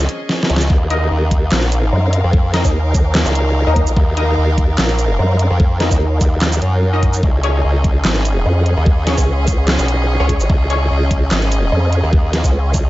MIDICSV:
0, 0, Header, 1, 6, 480
1, 0, Start_track
1, 0, Key_signature, -6, "minor"
1, 0, Tempo, 408163
1, 823, Time_signature, 4, 2, 24, 8
1, 15168, End_track
2, 0, Start_track
2, 0, Title_t, "Synth stab"
2, 0, Program_c, 0, 62
2, 1063, Note_on_c, 0, 63, 89
2, 1063, Note_on_c, 0, 70, 84
2, 1063, Note_on_c, 0, 75, 97
2, 1208, Note_off_c, 0, 63, 0
2, 1208, Note_off_c, 0, 75, 0
2, 1209, Note_off_c, 0, 70, 0
2, 2983, Note_on_c, 0, 63, 80
2, 2983, Note_on_c, 0, 70, 74
2, 2983, Note_on_c, 0, 75, 90
2, 3076, Note_off_c, 0, 63, 0
2, 3076, Note_off_c, 0, 70, 0
2, 3076, Note_off_c, 0, 75, 0
2, 4311, Note_on_c, 0, 63, 88
2, 4311, Note_on_c, 0, 70, 82
2, 4311, Note_on_c, 0, 75, 97
2, 4443, Note_off_c, 0, 63, 0
2, 4443, Note_off_c, 0, 70, 0
2, 4443, Note_off_c, 0, 75, 0
2, 4903, Note_on_c, 0, 63, 88
2, 4903, Note_on_c, 0, 70, 81
2, 4903, Note_on_c, 0, 75, 98
2, 5048, Note_off_c, 0, 63, 0
2, 5048, Note_off_c, 0, 70, 0
2, 5048, Note_off_c, 0, 75, 0
2, 6823, Note_on_c, 0, 63, 82
2, 6823, Note_on_c, 0, 70, 75
2, 6823, Note_on_c, 0, 75, 90
2, 6915, Note_off_c, 0, 63, 0
2, 6915, Note_off_c, 0, 70, 0
2, 6916, Note_off_c, 0, 75, 0
2, 8151, Note_on_c, 0, 63, 90
2, 8152, Note_on_c, 0, 70, 76
2, 8152, Note_on_c, 0, 75, 95
2, 8283, Note_off_c, 0, 63, 0
2, 8283, Note_off_c, 0, 70, 0
2, 8283, Note_off_c, 0, 75, 0
2, 8743, Note_on_c, 0, 61, 93
2, 8743, Note_on_c, 0, 68, 80
2, 8743, Note_on_c, 0, 73, 97
2, 8889, Note_off_c, 0, 61, 0
2, 8889, Note_off_c, 0, 68, 0
2, 8889, Note_off_c, 0, 73, 0
2, 10663, Note_on_c, 0, 61, 82
2, 10663, Note_on_c, 0, 68, 75
2, 10663, Note_on_c, 0, 73, 92
2, 10756, Note_off_c, 0, 61, 0
2, 10756, Note_off_c, 0, 68, 0
2, 10756, Note_off_c, 0, 73, 0
2, 11991, Note_on_c, 0, 61, 84
2, 11991, Note_on_c, 0, 68, 81
2, 11991, Note_on_c, 0, 73, 96
2, 12123, Note_off_c, 0, 61, 0
2, 12123, Note_off_c, 0, 68, 0
2, 12123, Note_off_c, 0, 73, 0
2, 12583, Note_on_c, 0, 61, 92
2, 12583, Note_on_c, 0, 68, 81
2, 12583, Note_on_c, 0, 73, 99
2, 12729, Note_off_c, 0, 61, 0
2, 12729, Note_off_c, 0, 68, 0
2, 12729, Note_off_c, 0, 73, 0
2, 15168, End_track
3, 0, Start_track
3, 0, Title_t, "String section"
3, 0, Program_c, 1, 48
3, 0, Note_on_c, 1, 61, 74
3, 0, Note_on_c, 1, 68, 76
3, 0, Note_on_c, 1, 75, 84
3, 823, Note_on_c, 1, 63, 69
3, 1005, Note_on_c, 1, 77, 73
3, 1177, Note_on_c, 1, 70, 88
3, 1603, Note_off_c, 1, 61, 0
3, 1817, Note_off_c, 1, 75, 0
3, 2376, Note_off_c, 1, 68, 0
3, 8504, Note_on_c, 1, 61, 78
3, 8649, Note_on_c, 1, 68, 85
3, 8854, Note_on_c, 1, 75, 82
3, 9411, Note_off_c, 1, 77, 0
3, 9646, Note_off_c, 1, 70, 0
3, 10074, Note_off_c, 1, 63, 0
3, 15168, Note_off_c, 1, 61, 0
3, 15168, Note_off_c, 1, 68, 0
3, 15168, Note_off_c, 1, 75, 0
3, 15168, End_track
4, 0, Start_track
4, 0, Title_t, "Wobble bass"
4, 0, Program_c, 2, 39
4, 2263, Note_on_c, 2, 42, 110
4, 2611, Note_off_c, 2, 42, 0
4, 3111, Note_on_c, 2, 39, 98
4, 3445, Note_off_c, 2, 39, 0
4, 3463, Note_on_c, 2, 39, 96
4, 3811, Note_off_c, 2, 39, 0
4, 4311, Note_on_c, 2, 39, 97
4, 4531, Note_off_c, 2, 39, 0
4, 4551, Note_on_c, 2, 34, 95
4, 4645, Note_off_c, 2, 34, 0
4, 6103, Note_on_c, 2, 42, 106
4, 6451, Note_off_c, 2, 42, 0
4, 6951, Note_on_c, 2, 39, 92
4, 7285, Note_off_c, 2, 39, 0
4, 9943, Note_on_c, 2, 41, 107
4, 10291, Note_off_c, 2, 41, 0
4, 10791, Note_on_c, 2, 37, 95
4, 11125, Note_off_c, 2, 37, 0
4, 11143, Note_on_c, 2, 37, 96
4, 11491, Note_off_c, 2, 37, 0
4, 11991, Note_on_c, 2, 37, 98
4, 12211, Note_off_c, 2, 37, 0
4, 12231, Note_on_c, 2, 32, 96
4, 12325, Note_off_c, 2, 32, 0
4, 13783, Note_on_c, 2, 41, 109
4, 14131, Note_off_c, 2, 41, 0
4, 14631, Note_on_c, 2, 37, 97
4, 14965, Note_off_c, 2, 37, 0
4, 15168, End_track
5, 0, Start_track
5, 0, Title_t, "Wobble bass"
5, 0, Program_c, 3, 39
5, 583, Note_on_c, 3, 37, 102
5, 805, Note_off_c, 3, 37, 0
5, 823, Note_on_c, 3, 39, 97
5, 1285, Note_off_c, 3, 39, 0
5, 1303, Note_on_c, 3, 39, 100
5, 1765, Note_off_c, 3, 39, 0
5, 1783, Note_on_c, 3, 34, 94
5, 2245, Note_off_c, 3, 34, 0
5, 2631, Note_on_c, 3, 41, 94
5, 3091, Note_off_c, 3, 41, 0
5, 3831, Note_on_c, 3, 37, 91
5, 4291, Note_off_c, 3, 37, 0
5, 4663, Note_on_c, 3, 39, 96
5, 5125, Note_off_c, 3, 39, 0
5, 5143, Note_on_c, 3, 39, 102
5, 5605, Note_off_c, 3, 39, 0
5, 5623, Note_on_c, 3, 34, 100
5, 6085, Note_off_c, 3, 34, 0
5, 6471, Note_on_c, 3, 41, 98
5, 6931, Note_off_c, 3, 41, 0
5, 7303, Note_on_c, 3, 39, 92
5, 7765, Note_off_c, 3, 39, 0
5, 7783, Note_on_c, 3, 42, 99
5, 8485, Note_off_c, 3, 42, 0
5, 8503, Note_on_c, 3, 37, 94
5, 8965, Note_off_c, 3, 37, 0
5, 8983, Note_on_c, 3, 37, 101
5, 9445, Note_off_c, 3, 37, 0
5, 9463, Note_on_c, 3, 32, 97
5, 9925, Note_off_c, 3, 32, 0
5, 10311, Note_on_c, 3, 39, 97
5, 10771, Note_off_c, 3, 39, 0
5, 11511, Note_on_c, 3, 35, 92
5, 11971, Note_off_c, 3, 35, 0
5, 12343, Note_on_c, 3, 37, 97
5, 12805, Note_off_c, 3, 37, 0
5, 12823, Note_on_c, 3, 37, 101
5, 13285, Note_off_c, 3, 37, 0
5, 13303, Note_on_c, 3, 32, 99
5, 13765, Note_off_c, 3, 32, 0
5, 14152, Note_on_c, 3, 39, 102
5, 14611, Note_off_c, 3, 39, 0
5, 14983, Note_on_c, 3, 37, 98
5, 15168, Note_off_c, 3, 37, 0
5, 15168, End_track
6, 0, Start_track
6, 0, Title_t, "Drums"
6, 103, Note_on_c, 9, 42, 85
6, 221, Note_off_c, 9, 42, 0
6, 343, Note_on_c, 9, 38, 66
6, 461, Note_off_c, 9, 38, 0
6, 504, Note_on_c, 9, 38, 79
6, 583, Note_on_c, 9, 42, 85
6, 621, Note_off_c, 9, 38, 0
6, 663, Note_on_c, 9, 38, 97
6, 701, Note_off_c, 9, 42, 0
6, 712, Note_on_c, 9, 82, 81
6, 781, Note_off_c, 9, 38, 0
6, 823, Note_on_c, 9, 36, 120
6, 829, Note_off_c, 9, 82, 0
6, 941, Note_off_c, 9, 36, 0
6, 1063, Note_on_c, 9, 42, 81
6, 1181, Note_off_c, 9, 42, 0
6, 1543, Note_on_c, 9, 36, 106
6, 1543, Note_on_c, 9, 42, 89
6, 1661, Note_off_c, 9, 36, 0
6, 1661, Note_off_c, 9, 42, 0
6, 1783, Note_on_c, 9, 38, 122
6, 1783, Note_on_c, 9, 39, 92
6, 1901, Note_off_c, 9, 38, 0
6, 1901, Note_off_c, 9, 39, 0
6, 1912, Note_on_c, 9, 42, 41
6, 2023, Note_off_c, 9, 42, 0
6, 2023, Note_on_c, 9, 42, 87
6, 2023, Note_on_c, 9, 82, 53
6, 2141, Note_off_c, 9, 42, 0
6, 2141, Note_off_c, 9, 82, 0
6, 2503, Note_on_c, 9, 42, 84
6, 2621, Note_off_c, 9, 42, 0
6, 2743, Note_on_c, 9, 36, 121
6, 2861, Note_off_c, 9, 36, 0
6, 2983, Note_on_c, 9, 38, 66
6, 2983, Note_on_c, 9, 42, 83
6, 3101, Note_off_c, 9, 38, 0
6, 3101, Note_off_c, 9, 42, 0
6, 3111, Note_on_c, 9, 36, 62
6, 3112, Note_on_c, 9, 82, 74
6, 3229, Note_off_c, 9, 36, 0
6, 3229, Note_off_c, 9, 82, 0
6, 3463, Note_on_c, 9, 36, 107
6, 3463, Note_on_c, 9, 42, 79
6, 3463, Note_on_c, 9, 82, 78
6, 3581, Note_off_c, 9, 36, 0
6, 3581, Note_off_c, 9, 42, 0
6, 3581, Note_off_c, 9, 82, 0
6, 3703, Note_on_c, 9, 38, 125
6, 3703, Note_on_c, 9, 39, 100
6, 3821, Note_off_c, 9, 38, 0
6, 3821, Note_off_c, 9, 39, 0
6, 3832, Note_on_c, 9, 42, 38
6, 3832, Note_on_c, 9, 82, 78
6, 3943, Note_off_c, 9, 42, 0
6, 3943, Note_on_c, 9, 42, 81
6, 3949, Note_off_c, 9, 82, 0
6, 4061, Note_off_c, 9, 42, 0
6, 4423, Note_on_c, 9, 36, 66
6, 4423, Note_on_c, 9, 42, 82
6, 4541, Note_off_c, 9, 36, 0
6, 4541, Note_off_c, 9, 42, 0
6, 4551, Note_on_c, 9, 82, 76
6, 4663, Note_on_c, 9, 36, 125
6, 4669, Note_off_c, 9, 82, 0
6, 4781, Note_off_c, 9, 36, 0
6, 4903, Note_on_c, 9, 42, 77
6, 5021, Note_off_c, 9, 42, 0
6, 5383, Note_on_c, 9, 36, 108
6, 5383, Note_on_c, 9, 42, 78
6, 5501, Note_off_c, 9, 36, 0
6, 5501, Note_off_c, 9, 42, 0
6, 5623, Note_on_c, 9, 38, 127
6, 5623, Note_on_c, 9, 39, 88
6, 5741, Note_off_c, 9, 38, 0
6, 5741, Note_off_c, 9, 39, 0
6, 5752, Note_on_c, 9, 42, 38
6, 5863, Note_off_c, 9, 42, 0
6, 5863, Note_on_c, 9, 42, 78
6, 5863, Note_on_c, 9, 82, 55
6, 5981, Note_off_c, 9, 42, 0
6, 5981, Note_off_c, 9, 82, 0
6, 6343, Note_on_c, 9, 42, 80
6, 6461, Note_off_c, 9, 42, 0
6, 6583, Note_on_c, 9, 36, 123
6, 6701, Note_off_c, 9, 36, 0
6, 6823, Note_on_c, 9, 38, 66
6, 6823, Note_on_c, 9, 42, 76
6, 6941, Note_off_c, 9, 38, 0
6, 6941, Note_off_c, 9, 42, 0
6, 6951, Note_on_c, 9, 36, 61
6, 6951, Note_on_c, 9, 82, 79
6, 7069, Note_off_c, 9, 36, 0
6, 7069, Note_off_c, 9, 82, 0
6, 7303, Note_on_c, 9, 36, 105
6, 7303, Note_on_c, 9, 42, 79
6, 7303, Note_on_c, 9, 82, 79
6, 7421, Note_off_c, 9, 36, 0
6, 7421, Note_off_c, 9, 42, 0
6, 7421, Note_off_c, 9, 82, 0
6, 7543, Note_on_c, 9, 38, 120
6, 7543, Note_on_c, 9, 39, 93
6, 7661, Note_off_c, 9, 38, 0
6, 7661, Note_off_c, 9, 39, 0
6, 7672, Note_on_c, 9, 42, 36
6, 7672, Note_on_c, 9, 82, 85
6, 7783, Note_off_c, 9, 42, 0
6, 7783, Note_on_c, 9, 42, 77
6, 7789, Note_off_c, 9, 82, 0
6, 7901, Note_off_c, 9, 42, 0
6, 8263, Note_on_c, 9, 36, 63
6, 8263, Note_on_c, 9, 42, 77
6, 8381, Note_off_c, 9, 36, 0
6, 8381, Note_off_c, 9, 42, 0
6, 8392, Note_on_c, 9, 82, 83
6, 8503, Note_on_c, 9, 36, 122
6, 8509, Note_off_c, 9, 82, 0
6, 8621, Note_off_c, 9, 36, 0
6, 8743, Note_on_c, 9, 42, 76
6, 8861, Note_off_c, 9, 42, 0
6, 9223, Note_on_c, 9, 36, 106
6, 9223, Note_on_c, 9, 42, 77
6, 9341, Note_off_c, 9, 36, 0
6, 9341, Note_off_c, 9, 42, 0
6, 9463, Note_on_c, 9, 38, 120
6, 9463, Note_on_c, 9, 39, 89
6, 9581, Note_off_c, 9, 38, 0
6, 9581, Note_off_c, 9, 39, 0
6, 9592, Note_on_c, 9, 42, 37
6, 9704, Note_off_c, 9, 42, 0
6, 9704, Note_on_c, 9, 42, 81
6, 9704, Note_on_c, 9, 82, 60
6, 9821, Note_off_c, 9, 42, 0
6, 9821, Note_off_c, 9, 82, 0
6, 10183, Note_on_c, 9, 42, 78
6, 10301, Note_off_c, 9, 42, 0
6, 10423, Note_on_c, 9, 36, 122
6, 10541, Note_off_c, 9, 36, 0
6, 10664, Note_on_c, 9, 38, 63
6, 10664, Note_on_c, 9, 42, 80
6, 10781, Note_off_c, 9, 38, 0
6, 10781, Note_off_c, 9, 42, 0
6, 10791, Note_on_c, 9, 36, 56
6, 10792, Note_on_c, 9, 82, 85
6, 10909, Note_off_c, 9, 36, 0
6, 10909, Note_off_c, 9, 82, 0
6, 11143, Note_on_c, 9, 36, 101
6, 11143, Note_on_c, 9, 42, 80
6, 11143, Note_on_c, 9, 82, 85
6, 11261, Note_off_c, 9, 36, 0
6, 11261, Note_off_c, 9, 42, 0
6, 11261, Note_off_c, 9, 82, 0
6, 11383, Note_on_c, 9, 38, 115
6, 11383, Note_on_c, 9, 39, 84
6, 11501, Note_off_c, 9, 38, 0
6, 11501, Note_off_c, 9, 39, 0
6, 11512, Note_on_c, 9, 42, 38
6, 11512, Note_on_c, 9, 82, 85
6, 11623, Note_off_c, 9, 42, 0
6, 11623, Note_on_c, 9, 42, 80
6, 11629, Note_off_c, 9, 82, 0
6, 11741, Note_off_c, 9, 42, 0
6, 12103, Note_on_c, 9, 36, 61
6, 12103, Note_on_c, 9, 42, 79
6, 12221, Note_off_c, 9, 36, 0
6, 12221, Note_off_c, 9, 42, 0
6, 12231, Note_on_c, 9, 82, 82
6, 12343, Note_on_c, 9, 36, 121
6, 12349, Note_off_c, 9, 82, 0
6, 12461, Note_off_c, 9, 36, 0
6, 12583, Note_on_c, 9, 42, 87
6, 12701, Note_off_c, 9, 42, 0
6, 13063, Note_on_c, 9, 36, 103
6, 13063, Note_on_c, 9, 42, 88
6, 13180, Note_off_c, 9, 36, 0
6, 13181, Note_off_c, 9, 42, 0
6, 13303, Note_on_c, 9, 38, 115
6, 13303, Note_on_c, 9, 39, 90
6, 13421, Note_off_c, 9, 38, 0
6, 13421, Note_off_c, 9, 39, 0
6, 13431, Note_on_c, 9, 42, 41
6, 13543, Note_off_c, 9, 42, 0
6, 13543, Note_on_c, 9, 42, 87
6, 13543, Note_on_c, 9, 82, 58
6, 13661, Note_off_c, 9, 42, 0
6, 13661, Note_off_c, 9, 82, 0
6, 14023, Note_on_c, 9, 42, 80
6, 14141, Note_off_c, 9, 42, 0
6, 14263, Note_on_c, 9, 36, 121
6, 14381, Note_off_c, 9, 36, 0
6, 14503, Note_on_c, 9, 38, 58
6, 14503, Note_on_c, 9, 42, 85
6, 14621, Note_off_c, 9, 38, 0
6, 14621, Note_off_c, 9, 42, 0
6, 14631, Note_on_c, 9, 36, 58
6, 14631, Note_on_c, 9, 82, 77
6, 14749, Note_off_c, 9, 36, 0
6, 14749, Note_off_c, 9, 82, 0
6, 14983, Note_on_c, 9, 36, 99
6, 14983, Note_on_c, 9, 42, 87
6, 14983, Note_on_c, 9, 82, 81
6, 15101, Note_off_c, 9, 36, 0
6, 15101, Note_off_c, 9, 42, 0
6, 15101, Note_off_c, 9, 82, 0
6, 15168, End_track
0, 0, End_of_file